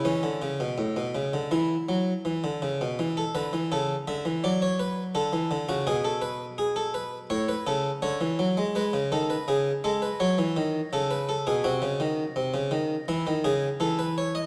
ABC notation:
X:1
M:4/4
L:1/16
Q:1/4=83
K:A
V:1 name="Harpsichord"
C8 E6 z2 | z A B2 A2 e2 d c B2 A3 F | G A B2 G A B2 c B A2 c4 | [K:C#m] B2 A B G2 A B c4 A B A G |
_G8 E2 ^G2 A B c d |]
V:2 name="Harpsichord" clef=bass
E, D, C, B,, A,, B,, C, D, E,2 F,2 E, D, C, B,, | E,2 D, E, C,2 D, E, F,4 D, E, D, C, | B,,8 A,,2 C,2 D, E, F, G, | [K:C#m] G, C, D,2 C,2 G,2 F, E, D,2 C,3 B,, |
=C, ^C, _E,2 =C, ^C, E,2 =E, D, C,2 E,4 |]